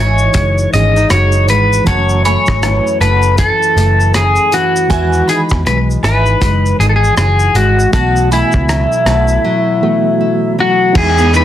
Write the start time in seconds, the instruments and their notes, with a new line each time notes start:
Already playing: picked electric bass G#1, reed electric piano D#3 E3 G#3 F#4, nylon-string guitar E3 G#3 D#4, clean electric guitar C#5, synth bell G#5
0.00 synth bell E5
0.18 shaker
0.34 picked electric bass F#1, nylon-string guitar G#3, kick, closed hi-hat, shaker
0.58 shaker
0.72 picked electric bass G#1, reed electric piano E3 G#3 D#4 G#4, nylon-string guitar C#4, clean electric guitar D#5, closed hi-hat, shaker
0.96 nylon-string guitar D#4, shaker
1.10 picked electric bass F#1, nylon-string guitar F#4, clean electric guitar C#5, cross-stick, closed hi-hat, shaker
1.32 shaker
1.49 picked electric bass G#1, nylon-string guitar G#3, clean electric guitar B4, closed hi-hat, shaker
1.73 shaker
1.85 picked electric bass F#1, nylon-string guitar F#2, reed electric piano E3 A3 C#4, clean electric guitar C#5, synth bell F#5 A5, kick, closed hi-hat, shaker
1.89 reed electric piano F#4
2.09 shaker
2.25 nylon-string guitar A3, clean electric guitar C#5, synth bell G#5 B5, closed hi-hat, shaker
2.46 picked electric bass G#1, kick, cross-stick, shaker
2.63 nylon-string guitar E3, cross-stick, closed hi-hat, shaker
2.87 shaker
3.01 picked electric bass F#1, nylon-string guitar A3, clean electric guitar B4, synth bell F#5 A5, closed hi-hat, shaker
3.22 shaker
3.38 nylon-string guitar E3, clean electric guitar A4, kick, closed hi-hat, shaker
3.63 shaker
3.76 picked electric bass F#1, nylon-string guitar A3, closed hi-hat, shaker
4.00 shaker
4.14 nylon-string guitar C#4, clean electric guitar G#4, cross-stick, closed hi-hat, shaker
4.36 shaker
4.52 nylon-string guitar E3, clean electric guitar F#4, closed hi-hat, shaker
4.76 shaker
4.88 picked electric bass E2, reed electric piano D#3 E3 G#3, nylon-string guitar E3, synth bell E5 G#5, kick, closed hi-hat, shaker
4.93 reed electric piano F#4
5.13 shaker
5.28 nylon-string guitar D#4, clean electric guitar G#4, synth bell G#5 B5, closed hi-hat, shaker
5.49 picked electric bass E2, kick, cross-stick, shaker
5.65 picked electric bass B1, nylon-string guitar G#3, clean electric guitar B4, cross-stick, closed hi-hat, shaker
5.90 shaker
6.03 picked electric bass G#1, nylon-string guitar D#4, clean electric guitar B4, synth bell E5 G#5, cross-stick, closed hi-hat, shaker
6.26 shaker
6.42 picked electric bass F#1, nylon-string guitar G#3, kick, closed hi-hat, shaker
6.66 shaker
6.79 picked electric bass G#1, nylon-string guitar D#4, clean electric guitar G#4, closed hi-hat, shaker
6.89 clean electric guitar A4
6.96 clean electric guitar G#4
7.04 shaker
7.17 picked electric bass F#1, nylon-string guitar F#4, clean electric guitar G#4, cross-stick, closed hi-hat, shaker
7.39 shaker
7.54 picked electric bass G#1, nylon-string guitar G#3, clean electric guitar F#4, closed hi-hat, shaker
7.80 shaker
7.91 picked electric bass B1, nylon-string guitar B2, reed electric piano E3 A3 B3, clean electric guitar F#4, synth bell F#5 A5, kick, closed hi-hat, shaker
7.95 reed electric piano F#4
8.16 shaker
8.31 nylon-string guitar A3, clean electric guitar E4, synth bell G#5 B5, closed hi-hat, shaker
8.52 picked electric bass C#2, kick, shaker
8.68 nylon-string guitar F#3, cross-stick, closed hi-hat, shaker
8.92 shaker
9.06 picked electric bass B1, nylon-string guitar A3, synth bell F#5 A5, cross-stick, closed hi-hat, shaker
9.28 shaker
9.44 nylon-string guitar F#3
9.81 reed electric piano E3 A3 B3 F#4, nylon-string guitar A3
10.21 nylon-string guitar E4
10.59 nylon-string guitar F#3, clean electric guitar F#4
10.93 picked electric bass E2, reed electric piano G#3 B3 D#4 E4, kick, crash
10.97 clean electric guitar G#4, reed electric piano G#4
11.18 nylon-string guitar B3, shaker
11.33 nylon-string guitar D#4, clean electric guitar B4, ride, shaker